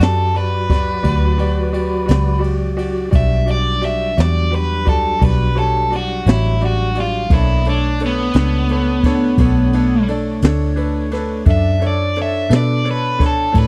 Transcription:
Already playing: F#3 F#4 D5
0.00 F#2 F#4 G4 A4 D5, snare, ride
0.35 F#4 G4 B4 D5, ride
0.70 F#4 G4 D5, kick, snare, ride
1.03 D2 F#4 G4 D5, kick, ride
1.38 F#4 G4 D5, ride
1.73 F#4 G4 D5, ride
2.06 C#2 F#4 G4 D5, ride
2.11 snare
2.39 F#4 G4 D5
2.44 ride
2.77 F#4 G4 D5, ride
3.11 B1 F#4 G4 D5, kick, ride
3.15 F#3 G3 D4 E5
3.46 F#4 G4 D5, ride
3.51 D5
3.81 F#4 G4 D5 E5, ride
4.17 E2 F#4 G4 D5, snare, ride
4.51 F#4 G4 B4, ride
4.55 B4
4.85 F#4 G4 A4 D5, kick, ride
5.19 B1 F#4 G4 D5, kick, ride
5.25 B4
5.55 F#4 G4 A4 C#5, ride
5.91 F#4 G4 D5, ride
5.96 F#4
6.26 A1 E4 F#4 G4 C#5, snare, ride
6.61 F#4 G4 D5, ride
6.65 F#4
6.95 F#4 G4 D5, ride
7.00 F4
7.30 B1 A#3 D4 E4 A4 C#5 D5 D#5, kick, ride
7.65 A3 D4 A4 C#5, ride
7.69 D4
7.99 D4 A4 C#5, ride
8.06 B3
8.33 C#2 D4 A4 C#5, snare, ride
8.68 D4 A4 C#5, ride
9.04 D4 A4 C#5, kick, snare, ride
9.38 B1 D4 A4 C#5, kick, ride
9.73 D4 A4 C#5, ride
10.08 D4 A4 D5, ride
10.42 D2 D4 A4 C#5, snare, ride
10.76 D4 A4 B4, ride
11.11 D4 A4 B4, snare, ride
11.46 F#2 D4 A4 E5, kick, ride
11.50 D5 E5
11.80 D4 A4 C#5, ride
11.87 D5
12.15 D4 A4 C#5, ride
12.22 E5
12.49 B2 D4 A4 B4, snare, ride
12.56 D5
12.84 D4 A4 C#5, ride
12.91 B4
13.19 D4 A4 C#5, kick, ride
13.23 A4, snare
13.52 A2 D4 A4 C#5, kick, ride
13.59 B4

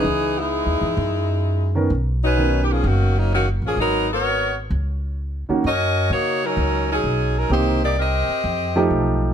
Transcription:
Already playing: E3 B3 D#4 G#4
0.04 C#2
0.38 G#3 B3 D#4 E4
0.66 D#2
0.81 E2
0.97 F#2
1.75 D#3 B3 C#4 A#4
1.90 B1
2.24 F#3 C#4 D#4 B4
2.37 D#3 B3 C#4 A#4
2.64 G4
2.71 F3 A#3 C#4 G#4
2.84 F#1 D#3 A#3 C#4 F#4
3.19 F#3 A#3 C#4 D#4
3.34 D#3 A#3 C#4 F#4
3.62 A1
3.66 F3 A#3 C#4 G#4
3.77 G#1 F#3 B3 D#4 A#4
4.13 B3 F#4 A#4 C#5
4.70 C#2
5.49 D#3 A#3 C#4 F#4, muted upright bass stroke
5.64 F#2 C#4 F#4 A#4 D#5
6.10 C#3 A#3 D#4 F#4 C#5
6.45 F#3 C#4 D#4 A#4
6.57 C#2
6.92 F#3 C#4 D#4 G#4
7.04 B1
7.37 F#3 C#4 D#4 A#4
7.50 C2 D#3 A#3 C4 D#4 G4 C5
7.84 A#3 D#4 G4 D5
7.99 C4 G4 A#4 D#5
8.29 muted upright bass stroke
8.44 F2
8.76 F3 A3 D#4 G4
8.90 B1

